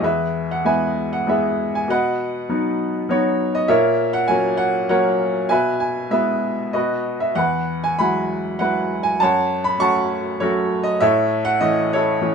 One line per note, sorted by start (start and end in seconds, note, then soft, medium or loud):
0.01 1.84 E2 medium
0.01 0.94 G#4 medium
0.01 0.64 B4 medium
0.01 0.48 E5 medium
0.51 0.67 F#5 medium
0.64 1.25 G#3 soft
0.64 1.25 B3 soft
0.64 1.26 E4 soft
0.64 1.28 B4 medium
0.64 1.28 E5 medium
0.64 1.14 G#5 medium
1.13 1.29 F#5 medium
1.27 1.87 G#3 soft
1.27 1.87 B3 soft
1.27 1.87 E4 soft
1.27 1.86 G#4 soft
1.27 1.86 B4 soft
1.27 1.76 E5 medium
1.75 1.90 G#5 medium
1.88 3.65 B2 medium
1.88 3.06 B4 medium
1.88 3.06 D#5 medium
1.88 3.13 F#5 medium
2.49 3.07 F#3 soft
2.49 3.07 B3 soft
2.49 3.08 D#4 soft
3.09 3.67 F#3 soft
3.09 3.68 B3 soft
3.09 3.67 D#4 soft
3.09 3.66 F#4 medium
3.09 3.52 C#5 medium
3.55 3.70 D#5 medium
3.68 5.46 A#2 medium
3.68 4.56 A#4 medium
3.68 4.56 C#5 medium
3.68 4.15 E5 medium
4.13 4.28 F#5 medium
4.28 4.88 F#3 soft
4.28 4.88 A#3 soft
4.28 4.88 C#4 medium
4.28 4.56 G#5 medium
4.57 4.88 F#5 medium
4.89 5.48 F#3 soft
4.89 5.48 A#3 soft
4.89 5.49 C#4 medium
4.89 5.46 A#4 medium
4.89 5.47 C#5 medium
4.89 5.52 F#5 medium
5.49 6.71 B2 medium
5.49 6.11 B4 medium
5.49 6.10 E5 medium
5.49 5.78 G#5 medium
5.80 6.09 G#5 medium
6.11 6.72 G#3 soft
6.11 6.73 B3 soft
6.11 6.73 E4 soft
6.11 6.71 G#4 medium
6.11 6.71 B4 medium
6.11 6.76 E5 medium
6.73 7.35 B2 medium
6.73 7.33 F#4 medium
6.73 7.34 B4 medium
6.73 7.23 D#5 medium
7.20 7.37 E5 medium
7.35 9.16 E2 medium
7.35 8.27 B4 medium
7.35 7.85 F#5 medium
7.84 7.99 G#5 medium
7.99 8.59 F#3 soft
7.99 8.59 G#3 soft
7.99 8.59 E4 soft
7.99 8.58 F#5 medium
7.99 8.88 G#5 medium
7.99 8.42 B5 medium
8.59 9.19 F#3 soft
8.59 9.19 G#3 soft
8.59 9.19 E4 soft
8.59 9.17 B4 medium
8.59 9.07 F#5 medium
9.03 9.19 G#5 medium
9.20 10.97 F#2 medium
9.20 10.08 C#5 medium
9.20 9.80 F#5 medium
9.20 9.67 A5 medium
9.64 9.81 B5 medium
9.79 10.38 F#3 soft
9.79 10.39 A3 soft
9.79 10.39 C#4 medium
9.79 10.68 F#5 medium
9.79 10.68 A5 medium
9.79 10.23 C#6 loud
10.40 10.99 F#3 soft
10.40 11.00 A3 soft
10.40 11.00 C#4 medium
10.40 10.98 F#4 medium
10.40 10.98 A4 medium
10.40 10.87 C#5 medium
10.84 11.01 D#5 medium
11.00 12.35 A2 medium
11.00 11.88 A4 medium
11.00 11.89 C#5 medium
11.00 11.48 E5 loud
11.45 11.61 F#5 medium
11.61 12.20 E3 medium
11.61 12.20 A3 soft
11.61 12.20 C#4 medium
11.61 11.92 D#5 medium
11.93 12.35 E4 medium
11.93 12.35 A4 medium
11.93 12.35 C#5 medium
12.22 12.35 E3 medium
12.22 12.35 A3 soft
12.22 12.35 C#4 medium